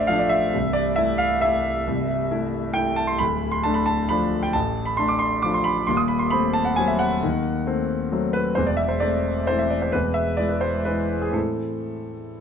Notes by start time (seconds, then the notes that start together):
Already playing: A1 A2 A3 D4 C5 D5 E5 F5
0.07 F3 A3 D4 F5
0.19 D5
0.29 E5
0.54 C1 C2
0.73 D5
0.96 A3 E4 E5
1.18 F5
1.41 A3 E4 E5
1.87 C1 C2
2.31 A3 E4
2.73 A3 E4 G5
2.96 A5
3.07 C6
3.18 D1 D2 B5
3.51 C6
3.63 A3 D4 A5
3.74 B5
3.86 A5
4.09 F3 A3 D4 B5
4.43 G5
4.53 A1 A2 A5
4.85 B5
4.97 A3 D4 C6
5.08 D6
5.19 C6
5.42 F3 A3 D4 D6
5.54 C6
5.64 B5
5.87 D#1 D#2 C6
5.97 D#6
6.08 B5
6.19 C6
6.30 A3 C4 B5
6.53 A5
6.65 F#5
6.76 F#3 A3 C4 G#5
6.88 E5
6.99 F#5
7.23 D#2 D#3
7.67 A3 C4
8.12 F#3 A3 C4
8.33 B4
8.55 E1 E2 C5
8.67 D5
8.77 E5
8.88 C5
9.00 A3 C4 D5
9.47 E3 A3 C4 C5
9.59 E5
9.70 D5
9.82 C5
9.92 E1 E2 B4
10.14 E5
10.37 G#3 E4 D5
10.49 B4
10.61 C5
10.85 E3 G#3 E4 B4
11.22 G#4
11.31 A2 E3 C4 E4 A4